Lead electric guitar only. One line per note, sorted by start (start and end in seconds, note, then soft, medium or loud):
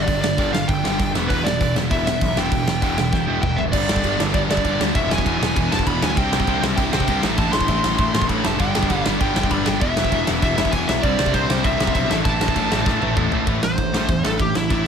0.00 0.20 D5 loud
0.22 0.53 D5 loud
0.53 0.69 F5 loud
0.68 1.11 G5 loud
1.28 1.45 B4 medium
1.44 1.73 D5 medium
1.91 2.38 E5 loud
2.38 3.40 G5 medium
3.42 3.59 G5 loud
3.56 3.61 E5 medium
3.72 4.19 D5 medium
4.34 4.39 D5 medium
4.51 4.79 D5 medium
4.95 5.11 E5 loud
5.11 5.72 G#5 loud
5.72 5.86 A5 loud
5.87 6.03 B5 loud
6.03 6.18 G#5 loud
6.18 6.63 G5 loud
6.76 6.81 G5 loud
6.93 7.21 G5 loud
7.39 7.52 A5 loud
7.53 8.25 C6 loud
8.29 8.44 B5 loud
8.44 8.60 A5 loud
8.60 9.03 G5 loud
9.21 9.36 G5 loud
9.37 9.51 G5 loud
9.51 9.67 B5 loud
9.66 9.81 G5 medium
9.81 10.24 E5 loud
10.43 10.55 E5 loud
10.56 10.71 E5 medium
10.71 10.88 G#5 loud
10.88 11.02 E5 medium
11.02 11.35 D5 loud
11.34 11.65 C5 loud
11.64 11.92 E5 medium
11.94 12.09 E5 loud
12.10 12.15 E5 medium
12.25 13.13 A5 medium
13.63 14.23 C5 loud
14.25 14.39 A4 medium
14.41 14.55 G4 loud
14.56 14.71 E4 medium
14.72 14.87 E4 medium